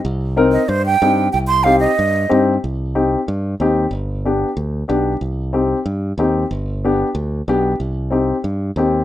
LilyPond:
<<
  \new Staff \with { instrumentName = "Flute" } { \time 4/4 \key c \minor \tempo 4 = 186 r4. ees''8 c''8 g''4. | g''8 c'''8 f''8 ees''2 r8 | r1 | r1 |
r1 | r1 | r1 | }
  \new Staff \with { instrumentName = "Upright piano" } { \time 4/4 \key c \minor r4 <c' ees' bes'>8 r4. <c' ees' g'>8 r8 | r4 <c' ees' g'>8 r4. <c' ees' g'>8 r8 | r4 <c' ees' g'>8 r4. <c' ees' g'>8 r8 | r4 <b d' g'>8 r4. <b d' g'>8 r8 |
r4 <c' ees' g'>8 r4. <c' ees' g'>8 r8 | r4 <b d' g'>8 r4. <b d' g'>8 r8 | r4 <c' ees' g'>8 r4. <c' ees' g'>8 r8 | }
  \new Staff \with { instrumentName = "Fingered electric bass" } { \clef bass \time 4/4 \key c \minor c,2 g,4 g,4 | c,2 g,4 g,4 | c,2 g,4 ees,4 | g,,2 d,4 b,,4 |
c,2 g,4 ees,4 | g,,2 d,4 b,,4 | c,2 g,4 ees,4 | }
>>